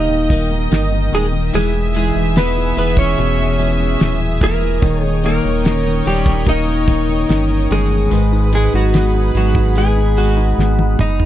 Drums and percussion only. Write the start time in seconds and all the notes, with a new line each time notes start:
0.30 kick, hi-hat pedal, open hi-hat
0.71 snare, hi-hat pedal, open hi-hat
1.12 hi-hat pedal, open hi-hat
1.54 hi-hat pedal, open hi-hat
1.95 hi-hat pedal, open hi-hat
2.36 snare, hi-hat pedal, open hi-hat
2.77 hi-hat pedal, open hi-hat
2.97 kick
3.17 hi-hat pedal, open hi-hat
3.59 hi-hat pedal, open hi-hat
4.00 snare, hi-hat pedal, open hi-hat
4.41 kick, hi-hat pedal, open hi-hat
4.82 kick, hi-hat pedal, open hi-hat
5.24 hi-hat pedal, open hi-hat
5.65 snare, hi-hat pedal, open hi-hat
6.06 hi-hat pedal, open hi-hat
6.26 kick, snare
6.46 kick, hi-hat pedal, open hi-hat
6.88 kick, hi-hat pedal, open hi-hat
7.29 snare, hi-hat pedal, open hi-hat
7.70 hi-hat pedal, open hi-hat
8.11 hi-hat pedal, open hi-hat
8.53 hi-hat pedal, open hi-hat
8.94 snare, hi-hat pedal, open hi-hat
9.35 hi-hat pedal, open hi-hat
9.55 kick
9.75 hi-hat pedal, open hi-hat
10.17 hi-hat pedal, open hi-hat
10.59 snare
10.79 high tom
10.99 mid tom
11.20 floor tom